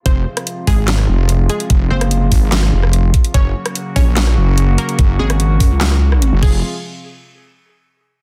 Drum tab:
CC |----------------|----------------|----------------|--------------x-|
HH |x--xx-o-x---x-xx|x--xx-o-x---x-xx|x--xx-o-x---x-xx|x--xx-o-x---x---|
CP |--------x-------|--------x-------|--------x-------|--------x-------|
SD |---r----or------|---r----or-r----|---r----or------|---r----or-r----|
BD |o-----o---------|o-----o-------o-|o-----o---------|o-----o-------o-|

CC |----------------|
HH |----------------|
CP |----------------|
SD |----------------|
BD |----------------|